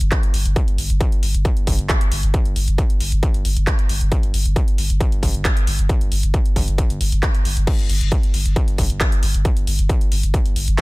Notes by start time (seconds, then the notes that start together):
0.01 G1, closed hi-hat
0.12 kick, clap, closed hi-hat
0.23 closed hi-hat
0.34 G1, open hi-hat
0.45 G1, closed hi-hat
0.56 kick, closed hi-hat
0.68 G1, closed hi-hat
0.78 G1, open hi-hat
0.90 G1, closed hi-hat
1.01 kick, closed hi-hat
1.12 closed hi-hat
1.23 G1, open hi-hat
1.34 G1, closed hi-hat
1.45 kick, closed hi-hat
1.57 G1, closed hi-hat
1.67 G1, kick, open hi-hat
1.79 G1, closed hi-hat
1.89 kick, clap, closed hi-hat
2.01 closed hi-hat
2.12 G1, open hi-hat
2.23 G1, closed hi-hat
2.34 kick, closed hi-hat
2.45 G1, closed hi-hat
2.56 G1, open hi-hat
2.68 G1, closed hi-hat
2.78 kick, closed hi-hat
2.90 closed hi-hat
3.00 G1, open hi-hat
3.12 G1, closed hi-hat
3.23 kick, closed hi-hat
3.34 G1, closed hi-hat
3.45 G1, open hi-hat
3.57 G1, closed hi-hat
3.67 kick, clap, closed hi-hat
3.79 closed hi-hat
3.89 G1, open hi-hat
4.01 G1, closed hi-hat
4.12 kick, closed hi-hat
4.23 G1, closed hi-hat
4.34 G1, open hi-hat
4.46 G1, closed hi-hat
4.56 kick, closed hi-hat
4.68 closed hi-hat
4.78 G1, open hi-hat
4.90 G1, closed hi-hat
5.01 kick, closed hi-hat
5.12 G1, closed hi-hat
5.23 G1, kick, open hi-hat
5.34 G1, closed hi-hat
5.45 kick, clap, closed hi-hat
5.57 closed hi-hat
5.67 G1, open hi-hat
5.79 G1, closed hi-hat
5.89 kick, closed hi-hat
6.01 G1, closed hi-hat
6.12 G1, open hi-hat
6.23 G1, closed hi-hat
6.34 kick, closed hi-hat
6.46 closed hi-hat
6.56 G1, kick, open hi-hat
6.68 G1, closed hi-hat
6.78 kick, closed hi-hat
6.90 G1, closed hi-hat
7.01 G1, open hi-hat
7.12 G1, closed hi-hat
7.23 kick, clap, closed hi-hat
7.35 closed hi-hat
7.45 G1, open hi-hat
7.57 G1, closed hi-hat
7.67 kick, closed hi-hat, crash
7.79 G1, closed hi-hat
7.90 G1, open hi-hat
8.01 G1, closed hi-hat
8.12 kick, closed hi-hat
8.23 closed hi-hat
8.34 G1, open hi-hat
8.46 G1, closed hi-hat
8.56 kick, closed hi-hat
8.68 G1, closed hi-hat
8.78 G1, kick, open hi-hat
8.90 G1, closed hi-hat
9.01 kick, clap, closed hi-hat
9.12 closed hi-hat
9.23 G1, open hi-hat
9.34 G1, closed hi-hat
9.45 kick, closed hi-hat
9.57 G1, closed hi-hat
9.67 G1, open hi-hat
9.79 G1, closed hi-hat
9.89 kick, closed hi-hat
10.01 closed hi-hat
10.12 G1, open hi-hat
10.23 G1, closed hi-hat
10.34 kick, closed hi-hat
10.45 G1, closed hi-hat
10.56 G1, open hi-hat
10.68 G1, closed hi-hat